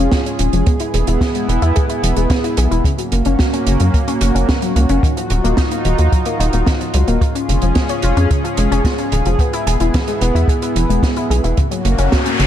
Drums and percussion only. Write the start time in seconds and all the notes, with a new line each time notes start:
0.12 kick, snare, closed hi-hat
0.26 closed hi-hat
0.39 closed hi-hat
0.53 closed hi-hat
0.66 kick, closed hi-hat
0.80 closed hi-hat
0.94 closed hi-hat
1.07 closed hi-hat
1.21 kick, snare, closed hi-hat
1.35 closed hi-hat
1.49 closed hi-hat
1.62 closed hi-hat
1.76 kick, closed hi-hat
1.89 closed hi-hat
2.04 closed hi-hat
2.16 closed hi-hat
2.30 kick, snare, closed hi-hat
2.44 closed hi-hat
2.57 closed hi-hat
2.72 closed hi-hat
2.84 kick, closed hi-hat
2.98 closed hi-hat
3.12 closed hi-hat
3.25 closed hi-hat
3.39 kick, snare, closed hi-hat
3.53 closed hi-hat
3.67 closed hi-hat
3.80 closed hi-hat
3.94 kick, closed hi-hat
4.08 closed hi-hat
4.21 closed hi-hat
4.36 closed hi-hat
4.49 kick, snare, closed hi-hat
4.62 closed hi-hat
4.76 closed hi-hat
4.89 closed hi-hat
5.03 kick, closed hi-hat
5.17 closed hi-hat
5.30 closed hi-hat
5.45 closed hi-hat
5.57 kick, snare, closed hi-hat
5.71 closed hi-hat
5.85 closed hi-hat
5.98 closed hi-hat
6.13 kick, closed hi-hat
6.25 closed hi-hat
6.40 closed hi-hat
6.53 closed hi-hat
6.66 kick, snare, closed hi-hat
6.81 closed hi-hat
6.94 closed hi-hat
7.08 closed hi-hat
7.21 kick, closed hi-hat
7.35 closed hi-hat
7.49 closed hi-hat
7.62 closed hi-hat
7.75 kick, snare, closed hi-hat
7.89 closed hi-hat
8.02 closed hi-hat
8.17 closed hi-hat
8.31 kick, closed hi-hat
8.45 closed hi-hat
8.57 closed hi-hat
8.72 closed hi-hat
8.85 kick, snare, closed hi-hat
8.98 closed hi-hat
9.12 closed hi-hat
9.25 closed hi-hat
9.39 kick, closed hi-hat
9.53 closed hi-hat
9.67 closed hi-hat
9.80 closed hi-hat
9.94 kick, snare, closed hi-hat
10.08 closed hi-hat
10.21 closed hi-hat
10.36 closed hi-hat
10.48 kick, closed hi-hat
10.62 closed hi-hat
10.76 closed hi-hat
10.90 closed hi-hat
11.03 kick, snare, closed hi-hat
11.16 closed hi-hat
11.31 closed hi-hat
11.44 closed hi-hat
11.57 kick, closed hi-hat
11.72 closed hi-hat
11.85 closed hi-hat
11.98 closed hi-hat
12.12 kick, snare, closed hi-hat
12.26 closed hi-hat
12.40 closed hi-hat